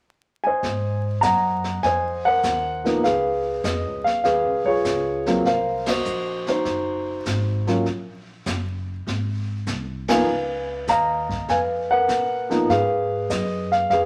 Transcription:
0.43 1.62 C5 medium
0.43 1.22 D#5 medium
0.43 1.00 G#5 medium
0.63 1.21 G#2 medium
0.63 brush sweep soft
0.63 kick soft
0.63 snare soft
1.21 1.81 F#2 medium
1.21 1.84 D#5 medium
1.21 2.24 F#5 medium
1.21 1.78 A#5 medium
1.21 kick soft
1.21 snare medium
1.21 hi-hat pedal medium
1.64 snare soft
1.83 2.42 F2 medium
1.83 2.25 C5 medium
1.83 3.01 D#5 medium
1.83 2.22 G#5 medium
1.83 brush sweep soft
1.83 kick soft
1.83 snare soft
2.25 3.01 A#4 medium
2.25 3.01 C5 medium
2.25 3.06 F#5 loud
2.43 3.02 D#2 medium
2.43 kick soft
2.43 snare medium
2.43 hi-hat pedal medium
2.84 3.01 F3 medium
2.84 3.02 A#3 medium
2.84 3.02 B3 medium
2.84 3.02 D#4 medium
2.84 snare soft
3.04 3.62 C#2 medium
3.04 4.21 G#4 medium
3.04 4.21 B4 medium
3.04 3.60 F5 medium
3.04 brush sweep soft
3.04 kick soft
3.04 snare soft
3.64 3.85 F2 medium
3.64 4.07 D#5 medium
3.64 kick soft
3.64 snare medium
3.64 hi-hat pedal medium
3.85 4.04 C#2 medium
4.04 4.23 B1 medium
4.04 4.22 F5 medium
4.04 snare soft
4.24 4.44 D#2 medium
4.24 4.66 G#4 medium
4.24 5.42 B4 medium
4.24 4.63 F5 medium
4.24 brush sweep soft
4.24 kick soft
4.24 snare soft
4.44 4.63 C#2 medium
4.64 4.83 B1 medium
4.64 5.26 F4 medium
4.64 5.42 G#4 medium
4.64 5.41 C#5 medium
4.85 5.43 C#2 medium
4.85 kick soft
4.85 snare medium
4.85 hi-hat pedal medium
5.26 5.43 F#3 medium
5.26 5.43 A#3 medium
5.26 5.44 C4 medium
5.26 5.44 F4 medium
5.26 snare soft
5.45 6.04 C2 medium
5.45 6.63 A#4 medium
5.45 5.88 C5 medium
5.45 5.88 F5 medium
5.45 brush sweep soft
5.45 kick soft
5.45 snare soft
5.86 6.48 F#4 medium
5.86 6.47 C5 medium
5.86 6.44 D#5 medium
5.86 snare medium
5.86 ride medium
6.05 6.64 A#1 medium
6.05 hi-hat pedal soft
6.47 7.65 D#4 soft
6.47 7.65 F#4 soft
6.47 7.64 C5 medium
6.47 snare soft
6.65 7.24 F#1 medium
6.65 brush sweep soft
6.65 kick soft
6.65 snare soft
7.25 7.84 G#1 medium
7.25 kick soft
7.25 snare medium
7.25 hi-hat pedal soft
7.67 7.84 F#3 medium
7.67 7.85 A#3 soft
7.67 7.85 C#4 soft
7.67 7.85 F4 medium
7.67 snare soft
7.86 8.45 A#1 medium
7.86 brush sweep soft
7.86 kick soft
7.86 snare soft
8.46 9.05 F#1 medium
8.46 kick soft
8.46 snare medium
8.46 hi-hat pedal medium
9.06 9.65 G#1 medium
9.06 brush sweep soft
9.06 kick soft
9.06 snare soft
9.66 10.26 C2 medium
9.66 kick soft
9.66 snare medium
9.66 hi-hat pedal soft
10.08 10.25 F3 medium
10.08 10.26 A#3 medium
10.08 10.26 B3 medium
10.08 10.26 D#4 medium
10.08 11.27 B4 medium
10.08 10.88 F5 medium
10.08 10.65 G#5 medium
10.08 snare medium
10.08 ride medium
10.27 10.86 C#2 medium
10.27 brush sweep soft
10.87 11.46 D#2 medium
10.87 12.06 D#5 medium
10.87 11.49 F5 medium
10.87 11.51 A#5 medium
10.87 kick soft
10.87 snare medium
10.87 hi-hat pedal medium
11.29 kick soft
11.29 snare soft
11.48 12.07 F2 medium
11.48 11.90 B4 medium
11.48 12.66 F5 medium
11.48 11.59 G#5 medium
11.48 brush sweep soft
11.48 kick soft
11.48 snare soft
11.91 13.08 A#4 medium
11.91 12.69 B4 medium
11.91 12.72 F#5 medium
12.08 12.67 A#2 medium
12.08 kick soft
12.08 snare medium
12.08 hi-hat pedal medium
12.49 12.67 F3 medium
12.49 12.67 A#3 medium
12.49 12.67 B3 medium
12.49 12.68 D#4 medium
12.49 snare soft
12.69 13.28 G#2 medium
12.69 13.87 G#4 medium
12.69 13.87 B4 medium
12.69 13.26 F5 medium
12.69 brush sweep soft
12.69 kick soft
12.69 snare soft
13.30 13.88 F#2 medium
13.30 13.73 D#5 medium
13.30 kick soft
13.30 snare medium
13.30 hi-hat pedal medium
13.72 13.89 F5 medium
13.72 snare soft
13.90 14.05 F2 medium
13.90 14.05 G#4 medium
13.90 14.05 B4 medium
13.90 14.00 F5 medium
13.90 brush sweep soft
13.90 kick soft
13.90 snare soft

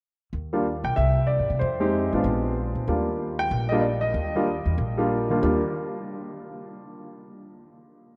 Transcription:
0.33 0.81 D#2 medium
0.53 0.64 G3 medium
0.53 0.64 A#3 medium
0.53 0.64 D4 medium
0.53 0.64 F4 medium
0.84 0.96 B1 medium
0.84 0.96 G5 medium
0.96 1.36 C2 medium
0.96 1.26 E5 medium
1.27 1.57 D5 medium
1.40 1.49 G#2 medium
1.50 1.60 C3 medium
1.59 2.09 F2 medium
1.59 2.19 C5 medium
1.80 2.10 G#3 medium
1.80 2.10 C4 medium
1.80 2.10 D#4 medium
1.80 2.10 G4 medium
2.12 2.23 A1 medium
2.12 2.54 G#3 medium
2.12 2.54 B3 medium
2.12 2.55 D4 medium
2.12 2.55 F4 medium
2.24 2.72 A#1 medium
2.75 2.87 A#2 medium
2.88 3.48 D#2 medium
2.88 3.35 G3 medium
2.88 3.35 A#3 medium
2.88 3.35 D4 medium
2.88 3.35 F4 medium
3.39 3.72 G5 loud
3.51 4.12 A#1 medium
3.69 3.82 G3 medium
3.69 3.82 A#3 medium
3.69 3.83 D4 medium
3.69 3.83 D#5 medium
3.73 3.83 F4 medium
3.81 3.86 D5 medium
4.01 5.06 D#5 medium
4.14 4.62 D#2 medium
4.35 4.46 G3 medium
4.35 4.46 A#3 medium
4.35 4.47 D4 medium
4.35 4.47 F4 medium
4.66 4.77 E2 medium
4.78 5.39 A#1 medium
4.97 5.28 G3 medium
4.97 5.28 A#3 medium
4.97 5.28 D4 medium
4.97 5.29 F4 medium
5.30 5.72 D#2 medium
5.30 5.41 G3 medium
5.30 5.41 A#3 medium
5.30 5.41 D4 medium
5.30 5.42 F4 medium
5.42 5.61 D#2 medium
5.42 5.60 G3 medium
5.42 5.60 A#3 medium
5.42 5.60 D4 medium
5.42 5.61 F4 medium

